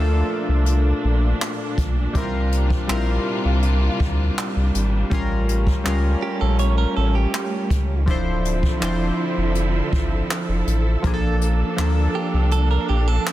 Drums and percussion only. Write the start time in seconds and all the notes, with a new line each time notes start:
0.66 closed hi-hat
1.42 clap, closed hi-hat
1.78 kick, closed hi-hat
2.15 kick, closed hi-hat
2.52 closed hi-hat
2.70 kick
2.89 clap, closed hi-hat
3.63 closed hi-hat
4.00 kick
4.38 clap, closed hi-hat
4.75 closed hi-hat
5.11 kick, closed hi-hat
5.49 closed hi-hat
5.67 kick
5.85 clap, closed hi-hat
6.59 closed hi-hat
7.34 clap, closed hi-hat
7.70 kick, closed hi-hat
8.08 kick, closed hi-hat
8.45 closed hi-hat
8.63 kick
8.82 clap, closed hi-hat
9.55 closed hi-hat
9.93 kick
10.31 clap, closed hi-hat
10.67 closed hi-hat
11.04 kick, closed hi-hat
11.41 closed hi-hat
11.78 clap, closed hi-hat
12.51 closed hi-hat
13.27 clap, closed hi-hat